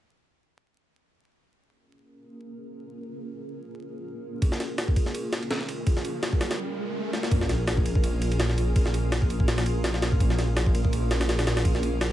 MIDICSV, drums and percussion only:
0, 0, Header, 1, 2, 480
1, 0, Start_track
1, 0, Key_signature, -5, "minor"
1, 0, Tempo, 361446
1, 2032, Time_signature, 4, 2, 24, 8
1, 16102, End_track
2, 0, Start_track
2, 0, Title_t, "Drums"
2, 5869, Note_on_c, 9, 51, 80
2, 5870, Note_on_c, 9, 36, 101
2, 6002, Note_off_c, 9, 51, 0
2, 6002, Note_on_c, 9, 38, 42
2, 6003, Note_off_c, 9, 36, 0
2, 6111, Note_off_c, 9, 38, 0
2, 6111, Note_on_c, 9, 38, 46
2, 6111, Note_on_c, 9, 51, 63
2, 6243, Note_off_c, 9, 38, 0
2, 6243, Note_off_c, 9, 51, 0
2, 6350, Note_on_c, 9, 38, 109
2, 6350, Note_on_c, 9, 51, 83
2, 6482, Note_on_c, 9, 36, 88
2, 6483, Note_off_c, 9, 38, 0
2, 6483, Note_off_c, 9, 51, 0
2, 6591, Note_off_c, 9, 36, 0
2, 6591, Note_on_c, 9, 36, 91
2, 6592, Note_on_c, 9, 51, 73
2, 6724, Note_off_c, 9, 36, 0
2, 6724, Note_on_c, 9, 38, 38
2, 6725, Note_off_c, 9, 51, 0
2, 6833, Note_on_c, 9, 51, 83
2, 6857, Note_off_c, 9, 38, 0
2, 6966, Note_off_c, 9, 51, 0
2, 7072, Note_on_c, 9, 38, 98
2, 7072, Note_on_c, 9, 51, 74
2, 7204, Note_off_c, 9, 51, 0
2, 7204, Note_on_c, 9, 51, 41
2, 7205, Note_off_c, 9, 38, 0
2, 7311, Note_off_c, 9, 51, 0
2, 7311, Note_on_c, 9, 38, 109
2, 7311, Note_on_c, 9, 51, 82
2, 7444, Note_off_c, 9, 38, 0
2, 7444, Note_off_c, 9, 51, 0
2, 7445, Note_on_c, 9, 38, 44
2, 7550, Note_on_c, 9, 51, 63
2, 7577, Note_off_c, 9, 38, 0
2, 7683, Note_off_c, 9, 51, 0
2, 7790, Note_on_c, 9, 51, 84
2, 7791, Note_on_c, 9, 36, 106
2, 7923, Note_off_c, 9, 51, 0
2, 7923, Note_on_c, 9, 38, 42
2, 7924, Note_off_c, 9, 36, 0
2, 8029, Note_on_c, 9, 51, 65
2, 8056, Note_off_c, 9, 38, 0
2, 8162, Note_off_c, 9, 51, 0
2, 8269, Note_on_c, 9, 38, 113
2, 8269, Note_on_c, 9, 51, 82
2, 8402, Note_off_c, 9, 38, 0
2, 8402, Note_off_c, 9, 51, 0
2, 8402, Note_on_c, 9, 36, 91
2, 8510, Note_on_c, 9, 38, 99
2, 8510, Note_on_c, 9, 51, 75
2, 8535, Note_off_c, 9, 36, 0
2, 8642, Note_off_c, 9, 38, 0
2, 8642, Note_off_c, 9, 51, 0
2, 8642, Note_on_c, 9, 38, 97
2, 8642, Note_on_c, 9, 51, 72
2, 8775, Note_off_c, 9, 38, 0
2, 8775, Note_off_c, 9, 51, 0
2, 9473, Note_on_c, 9, 38, 59
2, 9604, Note_off_c, 9, 38, 0
2, 9604, Note_on_c, 9, 38, 69
2, 9712, Note_on_c, 9, 36, 110
2, 9713, Note_on_c, 9, 51, 87
2, 9737, Note_off_c, 9, 38, 0
2, 9844, Note_on_c, 9, 38, 44
2, 9845, Note_off_c, 9, 36, 0
2, 9846, Note_off_c, 9, 51, 0
2, 9950, Note_off_c, 9, 38, 0
2, 9950, Note_on_c, 9, 38, 49
2, 9950, Note_on_c, 9, 51, 67
2, 10083, Note_off_c, 9, 38, 0
2, 10083, Note_off_c, 9, 51, 0
2, 10191, Note_on_c, 9, 38, 116
2, 10191, Note_on_c, 9, 51, 92
2, 10323, Note_on_c, 9, 36, 92
2, 10324, Note_off_c, 9, 38, 0
2, 10324, Note_off_c, 9, 51, 0
2, 10433, Note_on_c, 9, 51, 69
2, 10456, Note_off_c, 9, 36, 0
2, 10563, Note_on_c, 9, 36, 96
2, 10565, Note_off_c, 9, 51, 0
2, 10672, Note_on_c, 9, 51, 90
2, 10696, Note_off_c, 9, 36, 0
2, 10805, Note_off_c, 9, 51, 0
2, 10912, Note_on_c, 9, 51, 69
2, 11044, Note_off_c, 9, 51, 0
2, 11044, Note_on_c, 9, 51, 44
2, 11150, Note_off_c, 9, 51, 0
2, 11150, Note_on_c, 9, 38, 113
2, 11150, Note_on_c, 9, 51, 88
2, 11282, Note_off_c, 9, 38, 0
2, 11282, Note_on_c, 9, 38, 45
2, 11283, Note_off_c, 9, 51, 0
2, 11391, Note_on_c, 9, 51, 70
2, 11414, Note_off_c, 9, 38, 0
2, 11524, Note_off_c, 9, 51, 0
2, 11631, Note_on_c, 9, 51, 87
2, 11632, Note_on_c, 9, 36, 110
2, 11761, Note_on_c, 9, 38, 45
2, 11764, Note_off_c, 9, 36, 0
2, 11764, Note_off_c, 9, 51, 0
2, 11872, Note_on_c, 9, 51, 69
2, 11894, Note_off_c, 9, 38, 0
2, 12005, Note_off_c, 9, 51, 0
2, 12111, Note_on_c, 9, 38, 119
2, 12111, Note_on_c, 9, 51, 92
2, 12243, Note_on_c, 9, 36, 97
2, 12244, Note_off_c, 9, 38, 0
2, 12244, Note_off_c, 9, 51, 0
2, 12351, Note_on_c, 9, 51, 67
2, 12375, Note_off_c, 9, 36, 0
2, 12482, Note_on_c, 9, 36, 95
2, 12484, Note_off_c, 9, 51, 0
2, 12589, Note_on_c, 9, 38, 109
2, 12589, Note_on_c, 9, 51, 80
2, 12615, Note_off_c, 9, 36, 0
2, 12721, Note_off_c, 9, 38, 0
2, 12721, Note_off_c, 9, 51, 0
2, 12721, Note_on_c, 9, 38, 105
2, 12721, Note_on_c, 9, 51, 78
2, 12828, Note_off_c, 9, 51, 0
2, 12828, Note_on_c, 9, 51, 70
2, 12853, Note_off_c, 9, 38, 0
2, 12961, Note_off_c, 9, 51, 0
2, 13069, Note_on_c, 9, 38, 106
2, 13069, Note_on_c, 9, 51, 77
2, 13202, Note_off_c, 9, 38, 0
2, 13202, Note_off_c, 9, 51, 0
2, 13202, Note_on_c, 9, 38, 50
2, 13312, Note_off_c, 9, 38, 0
2, 13312, Note_on_c, 9, 38, 107
2, 13312, Note_on_c, 9, 51, 79
2, 13443, Note_on_c, 9, 36, 87
2, 13444, Note_off_c, 9, 38, 0
2, 13444, Note_off_c, 9, 51, 0
2, 13551, Note_on_c, 9, 51, 88
2, 13552, Note_off_c, 9, 36, 0
2, 13552, Note_on_c, 9, 36, 107
2, 13682, Note_on_c, 9, 38, 45
2, 13684, Note_off_c, 9, 51, 0
2, 13685, Note_off_c, 9, 36, 0
2, 13792, Note_off_c, 9, 38, 0
2, 13792, Note_on_c, 9, 38, 51
2, 13792, Note_on_c, 9, 51, 70
2, 13925, Note_off_c, 9, 38, 0
2, 13925, Note_off_c, 9, 51, 0
2, 14032, Note_on_c, 9, 38, 121
2, 14032, Note_on_c, 9, 51, 91
2, 14163, Note_on_c, 9, 36, 96
2, 14164, Note_off_c, 9, 38, 0
2, 14164, Note_off_c, 9, 51, 0
2, 14271, Note_on_c, 9, 51, 67
2, 14296, Note_off_c, 9, 36, 0
2, 14403, Note_on_c, 9, 36, 95
2, 14404, Note_off_c, 9, 51, 0
2, 14513, Note_on_c, 9, 51, 89
2, 14536, Note_off_c, 9, 36, 0
2, 14646, Note_off_c, 9, 51, 0
2, 14752, Note_on_c, 9, 38, 102
2, 14752, Note_on_c, 9, 51, 80
2, 14883, Note_off_c, 9, 38, 0
2, 14883, Note_off_c, 9, 51, 0
2, 14883, Note_on_c, 9, 38, 104
2, 14883, Note_on_c, 9, 51, 80
2, 14993, Note_off_c, 9, 38, 0
2, 14993, Note_off_c, 9, 51, 0
2, 14993, Note_on_c, 9, 38, 106
2, 14993, Note_on_c, 9, 51, 76
2, 15124, Note_off_c, 9, 38, 0
2, 15124, Note_off_c, 9, 51, 0
2, 15124, Note_on_c, 9, 38, 103
2, 15124, Note_on_c, 9, 51, 80
2, 15232, Note_off_c, 9, 38, 0
2, 15232, Note_off_c, 9, 51, 0
2, 15232, Note_on_c, 9, 38, 103
2, 15232, Note_on_c, 9, 51, 77
2, 15364, Note_off_c, 9, 38, 0
2, 15364, Note_off_c, 9, 51, 0
2, 15364, Note_on_c, 9, 38, 102
2, 15364, Note_on_c, 9, 51, 78
2, 15471, Note_on_c, 9, 36, 111
2, 15473, Note_off_c, 9, 51, 0
2, 15473, Note_on_c, 9, 51, 87
2, 15497, Note_off_c, 9, 38, 0
2, 15602, Note_on_c, 9, 38, 45
2, 15604, Note_off_c, 9, 36, 0
2, 15606, Note_off_c, 9, 51, 0
2, 15710, Note_on_c, 9, 51, 68
2, 15735, Note_off_c, 9, 38, 0
2, 15843, Note_off_c, 9, 51, 0
2, 15951, Note_on_c, 9, 38, 122
2, 15951, Note_on_c, 9, 51, 88
2, 16084, Note_off_c, 9, 38, 0
2, 16084, Note_off_c, 9, 51, 0
2, 16102, End_track
0, 0, End_of_file